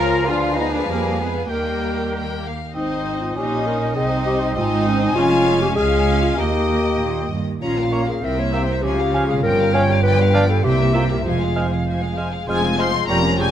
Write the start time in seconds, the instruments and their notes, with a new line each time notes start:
Already playing: double bass section C#2, bassoon F3, violin section F4 C#5 F5, french horn section F4, viola section A#4, clarinet A#4, cello section A#4, cor anglais G#5, flute section A#5
0.26 double bass section D2, bassoon F3, french horn section D4, cello section F4, viola section F4, violin section G#4 B4 F5, clarinet B4, flute section F5, cor anglais G#5
0.57 french horn section B3, viola section D#4, cello section D#4, flute section D#5
0.71 french horn section A#3, viola section D4, cello section D4
0.76 flute section D5
0.88 double bass section F2, french horn section G3, viola section A#3, cello section A#3, flute section A#4
1.19 french horn section G#3, viola section B3, cello section B3, flute section B4
1.49 double bass section D#2, bassoon D#3, french horn section G3, viola section A#3, cello section A#3, violin section G4 A#4 G5, flute section A#4, clarinet A#4, cor anglais G5
2.14 violin section G5
2.45 violin section F5
2.73 double bass section G#1, cello section G#2, french horn section C4 D#4, bassoon C4, viola section D#4, clarinet D#4, violin section C5 D#5, flute section C5, cor anglais D#5
3.21 clarinet F4
3.35 double bass section A#1, cello section A#2, french horn section C#4, bassoon C#4, viola section D#4, clarinet G4, violin section C#5 D#5, cor anglais D#5, flute section D#5
3.67 clarinet A#4
3.95 double bass section C2, cello section C3, bassoon C4, french horn section C4, viola section D#4, clarinet G#4, violin section C5 D#5, cor anglais D#5
4.26 clarinet G4
4.55 double bass section G#1, cello section G#2, bassoon C4, viola section D#4, clarinet F4, violin section C5 D#5, cor anglais D#5, flute section G#5
4.88 clarinet C#4
5.02 clarinet D#4
5.15 double bass section F1, cello section F2, bassoon G#3, french horn section G#3 C#4, viola section C#4, clarinet F4, cor anglais C#5, violin section F5 G#5
5.62 clarinet G4
5.75 double bass section C#2, cello section C#2, bassoon G#3, viola section C#4, french horn section F4, clarinet G#4, cor anglais F5, violin section F5 G#5, flute section F5
6.23 clarinet F4
6.37 cello section D#2, double bass section D#2, french horn section A#3 D#4, bassoon A#3, viola section A#3, clarinet G4, violin section D#5, cor anglais D#5, flute section G5
7.00 cello section A#2
7.31 cello section G2
7.61 double bass section A#1, cello section A#2, viola section C#4, french horn section C#4 F4, clarinet F4, violin section C#5 A#5, flute section F5
7.77 viola section A#3, violin section A#4 F5
7.92 bassoon A#3, viola section C#4, violin section C#5 A#5, cor anglais C#5
8.07 viola section A#3, clarinet G#4, violin section A#4 F5
8.21 double bass section C2, cello section C3, viola section C4, french horn section C4 E4, clarinet A#4, violin section C5, flute section E5
8.26 violin section G5
8.37 viola section A#3, violin section A#4 E5, clarinet C#5
8.53 bassoon A#3, viola section C4, clarinet C5, violin section C5 G5, cor anglais E5
8.67 viola section A#3, violin section A#4 E5
8.81 double bass section C#2, cello section C#3, viola section F3, french horn section C#4 F4, clarinet G4, violin section C#5 G#5, flute section F5
8.97 viola section G#3, violin section G#4 F5
9.12 viola section F3, bassoon C#4, violin section C#5 G#5, cor anglais F5
9.28 viola section G#3, clarinet G#4, violin section G#4 F5
9.42 double bass section G1, cello section G2, viola section F3, clarinet A#4, violin section C#5 G5, flute section G5
9.58 viola section G3, violin section A#4 F5
9.73 viola section F3, bassoon C#4, clarinet C#5, violin section C#5 G5, cor anglais F5
9.88 viola section G3, violin section A#4 F5
10.03 viola section F3, french horn section D4, clarinet B4, violin section D5 G5
10.19 viola section G3, violin section B4 F5
10.34 viola section F3, bassoon D4, violin section D5 G5, cor anglais F5
10.49 viola section G3, clarinet A4, violin section B4 F5
10.63 double bass section C2, cello section C3, french horn section A#3 E4, viola section C4, clarinet G4, violin section C5 G5, flute section E5
10.79 viola section A#3, violin section A#4 E5
10.93 bassoon A#3, viola section C4, clarinet F4, violin section C5 G5, cor anglais E5
11.09 viola section A#3, clarinet G4, violin section A#4 E5
11.24 double bass section F1, cello section F2, viola section F3, french horn section G#3 F4, clarinet F4, violin section C5 G#5, flute section F5
11.40 viola section G#3, violin section G#4 F5
11.56 viola section F3, bassoon G#3, violin section C5 G#5, cor anglais F5
11.72 viola section G#3, violin section G#4 F5
11.86 viola section F3, violin section C5 G#5
12.01 viola section G#3, violin section G#4 F5
12.15 viola section F3, bassoon G#3, violin section C5 G#5, cor anglais F5
12.32 viola section G#3, violin section G#4 F5
12.47 double bass section F1, cello section F2, french horn section G#3 F4, bassoon G#3, viola section G#3 C4, violin section F4 G#4 G#5, clarinet G#4, cor anglais C5, flute section F6
12.63 viola section G#3 C4, violin section C4 F4
12.77 bassoon G#3, viola section G#3 C4, violin section F4 G#4 C6, clarinet C5, cor anglais C5, flute section F6
12.93 viola section G#3 C4, violin section C4 F4
13.07 double bass section F1, cello section F2, viola section F3 A#3, french horn section G3 C#4, bassoon G3, violin section F4 G4 A#5, clarinet A#4, cor anglais C#5, flute section G6
13.22 viola section F3 G3, violin section C#4 F4
13.38 viola section F3 A#3, bassoon G3, violin section F4 G4 G#5, clarinet G#4, cor anglais C#5, flute section G6